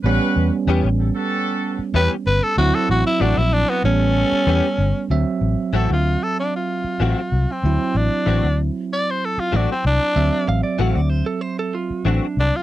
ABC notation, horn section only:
X:1
M:4/4
L:1/16
Q:1/4=95
K:Dmix
V:1 name="Horn section"
[B,^CGB]3 z3 [GA] [B,CGA]4 z4 z | [CDEF]3 z3 [EA] [CDEF] [B,^CGA]6 z2 | z16 | z16 |
z16 |]